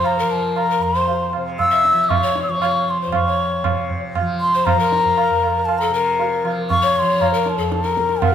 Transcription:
Already playing: tanpura F2 C3 F3, pan flute C5
0.04 bansuri A#5, tabla na
0.19 tanpura F3, pan flute A#4
0.31 bansuri A5
0.56 bansuri A#5, tabla na
0.70 pan flute A#4
0.79 tanpura F2
0.83 bansuri C6
0.95 pan flute C5
1.08 tabla tin
1.33 tanpura C3, tabla na
1.59 bansuri E6, tabla na, tabla ge
1.71 pan flute E5
1.85 tabla te
1.92 tanpura F3
2.04 bansuri E6
2.10 bansuri C#6, tabla na, tabla ge
2.23 pan flute C#5
2.36 tabla te
2.43 bansuri E6
2.49 tanpura F3, bansuri C#6
2.62 pan flute C#5, tabla na
2.90 bansuri C6
3.01 pan flute C5
3.07 tanpura F2
3.12 bansuri C#6, tabla na, tabla ge
3.27 pan flute C#5
3.64 tanpura C3, tabla na, tabla ge
3.90 tabla ge
4.15 tabla na, tabla ge
4.21 tanpura F3
4.41 bansuri C6
4.55 pan flute C5
4.65 bansuri A#5, tabla na, tabla ge
4.76 tanpura F3, pan flute A#4
4.92 tabla te
5.05 tabla ge
5.18 tabla na
5.30 tanpura F2
5.43 tabla na
5.65 bansuri A5, tabla na
5.78 pan flute A4, bansuri A#5
5.89 tanpura C3
5.94 pan flute A#4
6.20 tabla tin
6.43 tanpura F3, tabla na
6.70 bansuri C#6, tabla na, tabla ge
6.82 pan flute C#5
6.96 bansuri C6 C#6
7.01 tanpura F3
7.21 bansuri A#5, tabla na, tabla ge
7.34 pan flute A#4
7.46 bansuri A5 A#5, tabla te
7.57 tanpura F2, pan flute A4
7.72 bansuri A5, tabla te
7.83 pan flute A#4, bansuri A#5, tabla te
7.97 tabla ke
8.09 tabla te
8.22 tanpura C3, bansuri F#5, tabla na, tabla ge

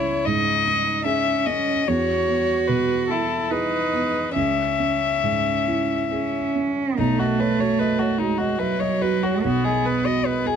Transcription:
Already playing: felt piano C#2 C#4, cello E4, violin C#5
0.25 felt piano G#2, cello D#4, violin D#5
0.66 felt piano D#4
1.05 cello C#4, felt piano G#4, violin E5
1.46 felt piano C#4, violin D#5
1.88 felt piano E2, cello F#4, violin C#5
2.29 felt piano B3
2.68 felt piano B2, violin B4
3.08 felt piano E4, cello E4, violin A4
3.51 cello D#4, felt piano G#4, violin B4
3.94 felt piano B3
4.36 felt piano C#2, cello C#4, violin E5
4.80 felt piano C#4
5.23 felt piano G#2
5.67 felt piano E4
6.11 cello C#4, felt piano G#4
6.55 felt piano C#4
6.98 felt piano B1, cello A3, violin D#4
7.19 violin F#4, felt piano D#5
7.39 violin B4, felt piano C#5
7.60 felt piano F#4, violin C#5
7.79 violin B4, felt piano D#5
7.99 violin F#4, felt piano C#5
8.19 cello G#3, violin D#4, felt piano F#4
8.38 violin F#4, felt piano D#5
8.59 cello F#3, violin B4, felt piano E5
8.80 violin C#5, felt piano D#5
9.02 felt piano F#4, violin B4
9.23 violin F#4, felt piano C#5
9.43 felt piano B1, cello B3, violin F#4
9.64 violin G#4, felt piano D#5
9.85 felt piano G#4, violin B4
10.05 felt piano F#4, violin D#5
10.26 violin B4, felt piano D#5
10.46 felt piano G#4, violin G#4

